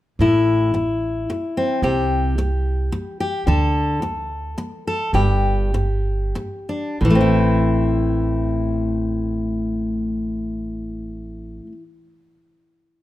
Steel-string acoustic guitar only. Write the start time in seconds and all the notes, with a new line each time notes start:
0.20 A2 E4
0.74 muted steel-string acoustic guitar stroke
1.30 muted steel-string acoustic guitar stroke
1.57 C4
1.83 C3 G4
2.38 muted steel-string acoustic guitar stroke
2.92 muted steel-string acoustic guitar stroke
3.20 G4
3.47 D3 A4
4.02 muted steel-string acoustic guitar stroke
4.58 muted steel-string acoustic guitar stroke
4.87 A4
5.14 G2 G4
5.74 muted steel-string acoustic guitar stroke
6.35 muted steel-string acoustic guitar stroke
6.69 D4
7.01 A2
7.05 E3
7.10 A3
7.15 C4
7.21 E4